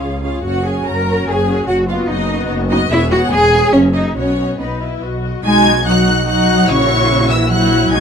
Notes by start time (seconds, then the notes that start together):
Already playing: C#4 F4 G#4 C#5 F5
0.03 C#2
0.24 C#4 F4 G#4 C#5 F5
0.44 F#1 C#4 F#4 C#5 F#5
0.66 C#4 F#4 G#4 C#5 G#5
0.86 F#1 A#4 A#5
1.07 C#4 F#4 C#5
1.28 F#1 G#4 G#5
1.49 C#4 F#4 C#5
1.68 F#1 F#4 F#5
1.89 B3 F4 F#4 D#5 F5
2.09 F#1 D#4 D#5
2.30 B3 F#4 D#5
2.50 F#1
2.70 B3 D#4 F#4 D#5
2.90 E1 B3 E4 G#4 C#5 E5
3.11 B3 F#4 G#4 C#5 F#5
3.31 E1 G#4 G#5
3.53 B3 G#4 C#5
3.73 F#1 A#3 C#4 G#4 C#5 E5
3.94 A#3 D#4 G#4 D#5 E5
4.16 B1 B3 C#4 F#4 C#5 D#5
4.38 B3 F#4 D#5
4.59 B1 B3 D#4 B4
4.81 E4 D#5
5.02 B1 F#4
5.24 D#5
5.44 B1 G#3 D#4 F#4 G#5 G#6
5.86 F#3 D#4 F#4 F#5 F#6
6.27 F#3 D#4 F#4 F#5 F#6
6.68 A#1 C#3 E4 F#4 C#5 C#6
7.30 E3 E5 E6
7.50 F#3 E4 F#4 F#5 F#6
7.91 B1 G#3 D#4 F#4 G#5 G#6